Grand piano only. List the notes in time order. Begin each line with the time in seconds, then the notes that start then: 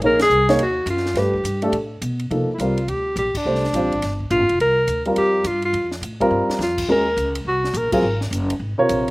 0.03 A#3 D#4 G#4 C#5
0.49 A#3 D#4 G#4 C#5
1.16 A3 D4 G4 B4
1.62 A3 D4 G4 A4
2.30 F3 A#3 D#4 A4
2.60 G3 C4 F4 A#4
3.46 A3 D4 G4 C5
3.75 G3 C4 F4 C5
5.06 G3 C4 F4 A#4
6.20 G3 C4 F4 A#4
6.89 G#3 C#4 F#4 A#4
7.92 F#3 C4 F4 G#4
8.78 C3 F4 A#4 C#5